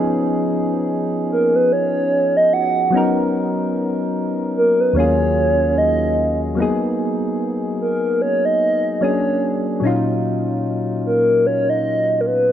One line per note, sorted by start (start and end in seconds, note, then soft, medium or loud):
0.00 2.88 F3 medium
0.00 2.88 B3 medium
0.00 2.89 C#4 medium
0.00 2.90 D#4 medium
0.00 2.91 G#4 medium
1.32 1.57 A#4 medium
1.55 1.74 B4 medium
1.72 2.38 C#5 loud
2.37 2.55 D#5 loud
2.53 3.17 F#5 loud
2.90 4.90 F#3 medium
2.90 4.91 B3 medium
2.90 4.92 C#4 medium
2.95 4.93 D#4 medium
2.95 4.94 A#4 medium
4.57 4.82 A#4 medium
4.80 4.98 B4 medium
4.93 6.53 D#2 medium
4.93 6.54 F#3 medium
4.93 6.55 A#3 medium
4.93 6.55 C#4 medium
4.93 5.79 C#5 loud
4.98 6.56 F4 medium
4.98 6.57 G#4 medium
5.78 6.41 D#5 loud
6.55 8.96 F#3 medium
6.55 8.97 A#3 medium
6.55 8.97 B3 medium
6.60 8.98 D#4 medium
6.60 8.99 G#4 medium
7.81 8.23 A#4 medium
8.22 8.47 C#5 loud
8.45 9.04 D#5 loud
9.01 9.79 F#3 medium
9.01 9.83 A#3 medium
9.01 9.82 C#4 medium
9.01 9.83 D4 medium
9.01 9.84 G#4 medium
9.01 9.66 C#5 medium
9.80 12.52 A#2 medium
9.80 12.52 F#3 medium
9.80 12.52 C#4 medium
9.85 12.52 D#4 medium
9.85 12.52 F4 medium
11.06 11.48 A#4 medium
11.46 11.71 C#5 loud
11.69 12.22 D#5 loud
12.21 12.28 A#4 medium
12.26 12.52 B4 medium